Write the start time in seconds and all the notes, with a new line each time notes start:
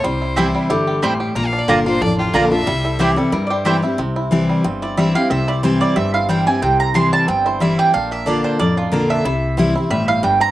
0.04 C2 C3 G3 C5
0.22 E4
0.36 E3 G3 C4 E4 G4 C5 G5
0.55 G3
0.70 G1 D3 E4 G4
0.87 G4
1.02 A2 G3 C4 E4 C5 G5
1.20 G4
1.35 A#1 A#2 A#3 A#5
1.47 F5
1.53 D4
1.59 D5
1.68 G1 D3 A#3 D4 F4 G4 A#4 D5 A#5
1.86 A#3 D4 F4 C5
2.01 A1 F2 D4 D5
2.18 F4 G4
2.33 A#1 D3 A#3 D4 F4 A#4 D5 A#5
2.51 D4 F4 E5
2.67 C2 C3 G3
2.85 E4 A4
2.99 E3 G3 C4 E4 G4 C5 G5
3.16 G3 C4 E4 A4
3.32 G2 E4 A#4
3.47 G4 C5 D5
3.65 E3 G3 C4 E4 G4 C5 G5
3.82 C4 E4
3.98 C2 C3 C4
4.16 E4
4.31 E3 G3 C4 E4
4.49 G3
4.64 G1 G2 C4
4.82 E4 D5
4.97 E3 G3 C4 E4 E5
5.15 C4 E4 G4 F5
5.30 C2 C3 C4 E5
5.48 E4 D5
5.63 E3 G3 C4 E4 C5
5.81 G3 D5
5.96 G1 G2 C4 E5
6.14 E4 F5
6.29 E3 G3 C4 E4 G5
6.46 C4 E4 G4 G#5
6.62 C2 C3 C4 G5
6.80 A#5
6.94 E3 G3 C4 E4 C6
7.13 G3 A5
7.28 G1 G2 C4 G5
7.46 E4 C5
7.60 E3 G3 C4 E4 E5
7.79 G4 G5
7.94 A#1 A#2 D4 F5
8.11 A#3 E5
8.26 D3 A#3 D4 F4 D5
8.44 D4 C5
8.59 A1 F2 A#3 D5
8.77 D4 F4
8.92 A#1 D3 A#3 D4 F4 A#4
9.10 D4 E5
9.25 C2 C3 E4
9.57 E3 G3 C4 E4
9.75 C4 E4
9.90 G1 A2 G3 E5
10.08 E4 F5
10.23 G2 G3 G5
10.40 C4 A#5